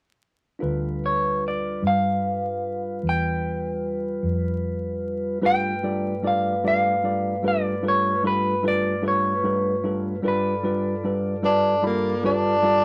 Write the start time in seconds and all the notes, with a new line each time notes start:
0.59 D2 G3 D4 F4 A4 B4
1.06 C#5
1.48 D5
1.82 G2
1.87 F5
3.03 E2
3.09 G5
4.23 F2
5.42 G2 G3 A3 D4 F4 A4 B4
5.46 G5
5.83 G3 D4 F4 A4 D5
6.23 G3 D4 F4 A4 D5
6.27 F5
6.64 G3 D4 F4 A4 D5 F5
7.03 G3 D4 F4 A4 D5
7.43 G3 D4 F4 A4 B4
7.48 D5
7.83 G3 D4 F4 A4 B4
7.88 C#5
8.23 G3 D4 F4 A4 B4
8.63 G3 D4 F4 A4 B4
8.68 D5
9.02 G3 D4 F4 A4 B4
9.08 C#5
9.44 G3 D4 F4 A4 B4
9.84 G3 D4 F4 A4 B4
10.23 G2 G3 D4 F4 A4 B4 D5
10.28 B4
10.63 G3 D4 F4 A4 B4
11.04 G3 D4 F4 A4 B4
11.43 G3 D4 F4 A4 B4
11.82 G3 D4 F4 A4 B5
11.86 A#3
12.23 G3 D4 F4 A4 B4
12.63 G3 D4 F4 A4 D5